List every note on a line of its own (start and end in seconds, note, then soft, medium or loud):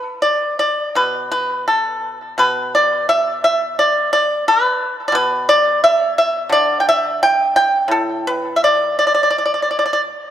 0.00 0.20 B4 medium
0.22 0.57 D5 medium
0.59 0.94 D5 medium
0.95 2.37 B2 soft
0.95 1.30 B4 medium
1.32 1.65 B4 medium
1.68 2.17 A4 medium
2.38 4.45 B2 medium
2.38 2.72 B4 medium
2.75 3.07 D5 medium
3.09 3.41 E5 medium
3.44 3.76 E5 medium
3.79 4.10 D5 medium
4.13 4.44 D5 medium
4.48 4.95 B4 medium
5.08 5.14 D5 medium
5.12 6.50 B2 medium
5.12 5.47 B4 medium
5.49 5.80 D5 medium
5.84 6.15 E5 medium
6.18 6.50 E5 medium
6.49 8.61 D3 medium
6.49 6.79 D5 medium
6.80 6.87 G5 medium
6.89 7.20 E5 medium
7.23 7.54 G5 medium
7.56 7.88 G5 medium
7.88 10.13 A2 medium
7.88 8.24 A4 medium
8.27 8.54 B4 medium
8.56 8.62 E5 medium
8.64 8.97 D5 medium
8.99 9.05 D5 medium
9.07 9.13 D5 soft
9.14 9.21 D5 soft
9.23 9.29 D5 soft
9.31 9.37 D5 soft
9.38 9.44 D5 soft
9.46 9.52 D5 soft
9.54 9.60 D5 soft
9.62 9.69 D5 soft
9.71 9.77 D5 soft
9.79 9.84 D5 soft
9.86 9.92 D5 soft
9.93 10.00 D5 medium